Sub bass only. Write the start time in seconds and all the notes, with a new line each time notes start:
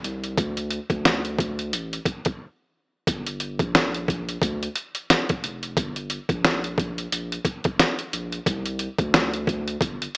0.04 C2
0.38 D2
0.90 D2
1.73 A1
3.07 G1
3.60 A#1
4.42 D2
5.43 F1
5.77 G1
6.29 A#1
7.12 A#1
8.13 A#1
8.46 C2
8.99 D2
9.81 G1